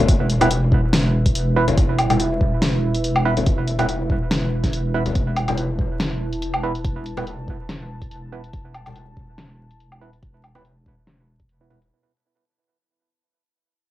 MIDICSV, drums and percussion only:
0, 0, Header, 1, 2, 480
1, 0, Start_track
1, 0, Tempo, 422535
1, 94, Time_signature, 4, 2, 24, 8
1, 15793, End_track
2, 0, Start_track
2, 0, Title_t, "Drums"
2, 95, Note_on_c, 9, 36, 118
2, 95, Note_on_c, 9, 42, 84
2, 209, Note_off_c, 9, 36, 0
2, 209, Note_off_c, 9, 42, 0
2, 335, Note_on_c, 9, 42, 56
2, 449, Note_off_c, 9, 42, 0
2, 462, Note_on_c, 9, 63, 87
2, 466, Note_on_c, 9, 42, 56
2, 466, Note_on_c, 9, 77, 54
2, 575, Note_off_c, 9, 42, 0
2, 575, Note_on_c, 9, 42, 79
2, 576, Note_off_c, 9, 63, 0
2, 580, Note_off_c, 9, 77, 0
2, 688, Note_off_c, 9, 42, 0
2, 816, Note_on_c, 9, 36, 60
2, 929, Note_off_c, 9, 36, 0
2, 1056, Note_on_c, 9, 38, 119
2, 1056, Note_on_c, 9, 42, 81
2, 1169, Note_off_c, 9, 38, 0
2, 1169, Note_off_c, 9, 42, 0
2, 1427, Note_on_c, 9, 36, 62
2, 1427, Note_on_c, 9, 42, 55
2, 1535, Note_off_c, 9, 42, 0
2, 1535, Note_on_c, 9, 42, 85
2, 1541, Note_off_c, 9, 36, 0
2, 1649, Note_off_c, 9, 42, 0
2, 1906, Note_on_c, 9, 42, 54
2, 1907, Note_on_c, 9, 64, 101
2, 2016, Note_off_c, 9, 42, 0
2, 2016, Note_on_c, 9, 36, 124
2, 2016, Note_on_c, 9, 42, 80
2, 2020, Note_off_c, 9, 64, 0
2, 2130, Note_off_c, 9, 36, 0
2, 2130, Note_off_c, 9, 42, 0
2, 2255, Note_on_c, 9, 42, 54
2, 2255, Note_on_c, 9, 77, 68
2, 2369, Note_off_c, 9, 42, 0
2, 2369, Note_off_c, 9, 77, 0
2, 2385, Note_on_c, 9, 63, 88
2, 2387, Note_on_c, 9, 42, 53
2, 2387, Note_on_c, 9, 77, 56
2, 2495, Note_off_c, 9, 42, 0
2, 2495, Note_on_c, 9, 42, 72
2, 2499, Note_off_c, 9, 63, 0
2, 2500, Note_off_c, 9, 77, 0
2, 2609, Note_off_c, 9, 42, 0
2, 2736, Note_on_c, 9, 36, 62
2, 2849, Note_off_c, 9, 36, 0
2, 2976, Note_on_c, 9, 38, 127
2, 2976, Note_on_c, 9, 42, 75
2, 3089, Note_off_c, 9, 38, 0
2, 3089, Note_off_c, 9, 42, 0
2, 3347, Note_on_c, 9, 42, 54
2, 3455, Note_off_c, 9, 42, 0
2, 3455, Note_on_c, 9, 42, 80
2, 3569, Note_off_c, 9, 42, 0
2, 3586, Note_on_c, 9, 77, 80
2, 3699, Note_off_c, 9, 77, 0
2, 3825, Note_on_c, 9, 42, 54
2, 3829, Note_on_c, 9, 64, 85
2, 3933, Note_off_c, 9, 42, 0
2, 3933, Note_on_c, 9, 42, 73
2, 3935, Note_on_c, 9, 36, 117
2, 3943, Note_off_c, 9, 64, 0
2, 4047, Note_off_c, 9, 42, 0
2, 4049, Note_off_c, 9, 36, 0
2, 4174, Note_on_c, 9, 42, 52
2, 4288, Note_off_c, 9, 42, 0
2, 4303, Note_on_c, 9, 63, 93
2, 4306, Note_on_c, 9, 42, 52
2, 4306, Note_on_c, 9, 77, 55
2, 4415, Note_off_c, 9, 42, 0
2, 4415, Note_on_c, 9, 42, 66
2, 4416, Note_off_c, 9, 63, 0
2, 4419, Note_off_c, 9, 77, 0
2, 4529, Note_off_c, 9, 42, 0
2, 4655, Note_on_c, 9, 36, 61
2, 4768, Note_off_c, 9, 36, 0
2, 4895, Note_on_c, 9, 38, 120
2, 4895, Note_on_c, 9, 42, 75
2, 5009, Note_off_c, 9, 38, 0
2, 5009, Note_off_c, 9, 42, 0
2, 5266, Note_on_c, 9, 36, 58
2, 5268, Note_on_c, 9, 38, 40
2, 5268, Note_on_c, 9, 42, 51
2, 5376, Note_off_c, 9, 42, 0
2, 5376, Note_on_c, 9, 42, 74
2, 5380, Note_off_c, 9, 36, 0
2, 5381, Note_off_c, 9, 38, 0
2, 5489, Note_off_c, 9, 42, 0
2, 5745, Note_on_c, 9, 64, 89
2, 5746, Note_on_c, 9, 42, 50
2, 5854, Note_off_c, 9, 42, 0
2, 5854, Note_on_c, 9, 42, 74
2, 5855, Note_on_c, 9, 36, 113
2, 5858, Note_off_c, 9, 64, 0
2, 5967, Note_off_c, 9, 42, 0
2, 5969, Note_off_c, 9, 36, 0
2, 6094, Note_on_c, 9, 42, 49
2, 6094, Note_on_c, 9, 77, 65
2, 6208, Note_off_c, 9, 42, 0
2, 6208, Note_off_c, 9, 77, 0
2, 6225, Note_on_c, 9, 42, 52
2, 6225, Note_on_c, 9, 77, 56
2, 6232, Note_on_c, 9, 63, 88
2, 6333, Note_off_c, 9, 42, 0
2, 6333, Note_on_c, 9, 42, 70
2, 6339, Note_off_c, 9, 77, 0
2, 6345, Note_off_c, 9, 63, 0
2, 6447, Note_off_c, 9, 42, 0
2, 6576, Note_on_c, 9, 36, 60
2, 6689, Note_off_c, 9, 36, 0
2, 6816, Note_on_c, 9, 38, 119
2, 6816, Note_on_c, 9, 42, 72
2, 6929, Note_off_c, 9, 38, 0
2, 6929, Note_off_c, 9, 42, 0
2, 7187, Note_on_c, 9, 42, 52
2, 7296, Note_off_c, 9, 42, 0
2, 7296, Note_on_c, 9, 42, 76
2, 7409, Note_off_c, 9, 42, 0
2, 7426, Note_on_c, 9, 77, 82
2, 7540, Note_off_c, 9, 77, 0
2, 7669, Note_on_c, 9, 42, 50
2, 7776, Note_on_c, 9, 36, 106
2, 7777, Note_off_c, 9, 42, 0
2, 7777, Note_on_c, 9, 42, 80
2, 7890, Note_off_c, 9, 36, 0
2, 7891, Note_off_c, 9, 42, 0
2, 8017, Note_on_c, 9, 42, 56
2, 8131, Note_off_c, 9, 42, 0
2, 8145, Note_on_c, 9, 63, 85
2, 8148, Note_on_c, 9, 42, 52
2, 8148, Note_on_c, 9, 77, 53
2, 8256, Note_off_c, 9, 42, 0
2, 8256, Note_on_c, 9, 42, 75
2, 8258, Note_off_c, 9, 63, 0
2, 8262, Note_off_c, 9, 77, 0
2, 8370, Note_off_c, 9, 42, 0
2, 8496, Note_on_c, 9, 36, 59
2, 8609, Note_off_c, 9, 36, 0
2, 8736, Note_on_c, 9, 38, 110
2, 8736, Note_on_c, 9, 42, 76
2, 8850, Note_off_c, 9, 38, 0
2, 8850, Note_off_c, 9, 42, 0
2, 9107, Note_on_c, 9, 36, 55
2, 9107, Note_on_c, 9, 42, 51
2, 9216, Note_off_c, 9, 42, 0
2, 9216, Note_on_c, 9, 42, 75
2, 9220, Note_off_c, 9, 36, 0
2, 9330, Note_off_c, 9, 42, 0
2, 9587, Note_on_c, 9, 42, 51
2, 9694, Note_off_c, 9, 42, 0
2, 9694, Note_on_c, 9, 42, 80
2, 9695, Note_on_c, 9, 36, 111
2, 9808, Note_off_c, 9, 42, 0
2, 9809, Note_off_c, 9, 36, 0
2, 9934, Note_on_c, 9, 42, 55
2, 9934, Note_on_c, 9, 77, 59
2, 10048, Note_off_c, 9, 42, 0
2, 10048, Note_off_c, 9, 77, 0
2, 10067, Note_on_c, 9, 42, 53
2, 10067, Note_on_c, 9, 77, 53
2, 10075, Note_on_c, 9, 63, 90
2, 10176, Note_off_c, 9, 42, 0
2, 10176, Note_on_c, 9, 42, 70
2, 10180, Note_off_c, 9, 77, 0
2, 10189, Note_off_c, 9, 63, 0
2, 10289, Note_off_c, 9, 42, 0
2, 10415, Note_on_c, 9, 36, 55
2, 10529, Note_off_c, 9, 36, 0
2, 10655, Note_on_c, 9, 38, 113
2, 10655, Note_on_c, 9, 42, 80
2, 10769, Note_off_c, 9, 38, 0
2, 10769, Note_off_c, 9, 42, 0
2, 11027, Note_on_c, 9, 42, 57
2, 11135, Note_off_c, 9, 42, 0
2, 11135, Note_on_c, 9, 42, 80
2, 11249, Note_off_c, 9, 42, 0
2, 11267, Note_on_c, 9, 77, 77
2, 11381, Note_off_c, 9, 77, 0
2, 11508, Note_on_c, 9, 42, 53
2, 11615, Note_off_c, 9, 42, 0
2, 11615, Note_on_c, 9, 42, 81
2, 11616, Note_on_c, 9, 36, 114
2, 11729, Note_off_c, 9, 36, 0
2, 11729, Note_off_c, 9, 42, 0
2, 11855, Note_on_c, 9, 42, 58
2, 11855, Note_on_c, 9, 77, 59
2, 11968, Note_off_c, 9, 42, 0
2, 11968, Note_off_c, 9, 77, 0
2, 11984, Note_on_c, 9, 63, 83
2, 11986, Note_on_c, 9, 42, 55
2, 11986, Note_on_c, 9, 77, 50
2, 12095, Note_off_c, 9, 42, 0
2, 12095, Note_on_c, 9, 42, 75
2, 12097, Note_off_c, 9, 63, 0
2, 12100, Note_off_c, 9, 77, 0
2, 12208, Note_off_c, 9, 42, 0
2, 12336, Note_on_c, 9, 36, 56
2, 12450, Note_off_c, 9, 36, 0
2, 12575, Note_on_c, 9, 38, 111
2, 12575, Note_on_c, 9, 42, 76
2, 12689, Note_off_c, 9, 38, 0
2, 12689, Note_off_c, 9, 42, 0
2, 12947, Note_on_c, 9, 36, 55
2, 12947, Note_on_c, 9, 42, 54
2, 13055, Note_off_c, 9, 42, 0
2, 13055, Note_on_c, 9, 42, 79
2, 13061, Note_off_c, 9, 36, 0
2, 13168, Note_off_c, 9, 42, 0
2, 13300, Note_on_c, 9, 63, 57
2, 13413, Note_off_c, 9, 63, 0
2, 13427, Note_on_c, 9, 42, 56
2, 13540, Note_off_c, 9, 42, 0
2, 15793, End_track
0, 0, End_of_file